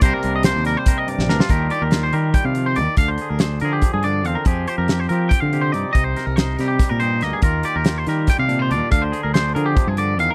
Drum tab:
HH |x-x-x-x-x-x---|x-x-x-x-x-x-x-|x-x-x-x-x-x-x-|x-x-x-x-x-x-x-|
SD |----o-o----ooo|----o---------|----o---------|----o---------|
BD |o-------o-----|o-------o-----|o-------o-----|o-------o-----|

HH |x-x-x-x-x-x-x-|x-x-x-x-x-x-x-|x-x-x-x-x-x-x-|
SD |--o-o-o-o---o-|----o-o-o-----|----o---------|
BD |o-------o-----|o-------o-----|o-------o-----|